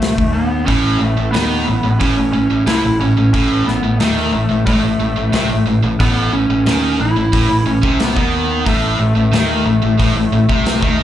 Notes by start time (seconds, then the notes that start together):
Already playing: C2 A3
0.02 snare, open hi-hat
0.18 D#2, kick
0.33 B3
0.65 A1 A2 C#4, kick, open hi-hat
0.99 A1 A2 A3
1.18 A1 A2
1.31 D#2 D#3 B3, snare, open hi-hat
1.68 A1 A2
1.84 A1 A2
1.99 A1 A2 C#4, kick, open hi-hat
2.18 A1 A2
2.33 A1 A2 C#4
2.51 A1 A2
2.67 C2 C3 E4, snare, open hi-hat
2.84 A1 A2
3.00 A1 A2 C#4
3.17 A1 A2
3.34 A1 A2 C#4, kick, open hi-hat
3.66 A1 A2 B3, snare
3.84 A1 A2
4.00 D#2 D#3 A3, snare, open hi-hat
4.33 A1 A2
4.50 A1 A2
4.66 A1 A2 A3, kick, open hi-hat
4.83 A1 A2
5.00 A1 A2
5.17 A1 A2
5.33 C2 C3, snare, open hi-hat
5.49 A1 A2
5.67 A1 A2
5.83 A1 A2
6.00 A1 A2 B3, kick, open hi-hat
6.33 A1 A2 C#4
6.50 A1 A2
6.66 D#2 D#3, snare, open hi-hat
7.00 A1 A2 E4
7.16 A1 A2
7.33 A1 A2, kick, open hi-hat
7.50 A1 A2
7.66 A1 A2 C#4
7.83 C2 C3, kick
8.00 B3, snare, open hi-hat
8.17 D#2 D#3, kick
8.66 A1 A2 A3, kick, open hi-hat
8.99 A1 A2
9.16 A1 A2
9.33 D#2 D#3, snare, open hi-hat
9.66 A1 A2
9.83 A1 A2
9.99 A1 A2, kick, open hi-hat
10.16 A1 A2
10.32 A1 A2
10.49 C2 C3, kick
10.66 snare, open hi-hat
10.82 D#2 D#3, kick